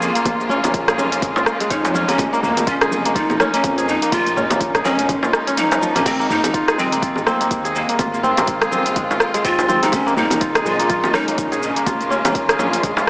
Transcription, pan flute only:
0.02 0.47 A#3 medium
1.71 2.11 D#4 loud
2.09 2.45 C#4 loud
2.44 2.69 A#3 medium
2.68 3.15 C#4 loud
3.16 3.55 D#4 loud
3.54 3.90 C#4 loud
3.88 4.14 D#4 loud
4.13 4.61 F4 loud
4.85 5.30 C#4 loud
5.58 5.98 D#4 loud
5.97 6.08 C#4 loud
6.06 6.32 C4 loud
6.31 6.80 D#4 loud
6.79 7.28 C4 loud
7.27 7.75 A#3 loud
7.75 8.20 A#3 medium
9.45 9.81 F4 loud
9.83 9.92 D#4 loud
9.93 10.19 C#4 loud
10.17 10.67 D#4 loud
10.66 11.15 F4 loud
11.14 11.64 D#4 loud
11.62 12.11 C#4 medium

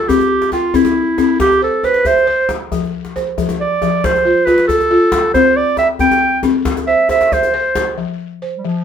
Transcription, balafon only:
0.00 0.31 F4 medium
0.09 0.52 C4 medium
0.53 1.18 G5 medium
0.74 1.17 C4 medium
1.18 1.62 C4 medium
1.62 1.83 C5 medium
1.84 2.26 C5 medium
2.06 2.71 E5 medium
2.27 2.93 C5 medium
2.72 3.15 F3 medium
3.16 3.81 C5 medium
3.38 3.81 F3 medium
3.82 4.25 F3 medium
4.25 4.46 F4 medium
4.47 4.90 F4 medium
4.69 5.34 A4 medium
4.91 5.34 F4 medium
5.35 5.78 C4 medium
5.79 6.44 G5 medium
6.00 6.43 C4 medium
6.44 6.88 C4 medium
6.87 7.08 C5 medium
7.10 7.53 C5 medium
7.32 7.98 E5 medium
7.54 8.20 C5 medium
7.98 8.42 F3 medium
8.42 8.84 C5 medium
8.65 8.84 F3 medium

